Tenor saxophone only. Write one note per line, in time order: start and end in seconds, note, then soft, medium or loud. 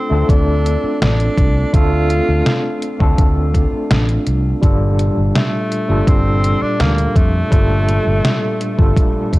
0.00 0.31 C4 medium
0.30 1.01 D4 loud
1.02 1.75 D4 loud
1.74 3.18 F4 loud
5.36 6.09 A3 medium
6.08 6.64 C4 loud
6.62 6.82 D4 loud
6.81 7.18 A#3 loud
7.17 9.39 A3 loud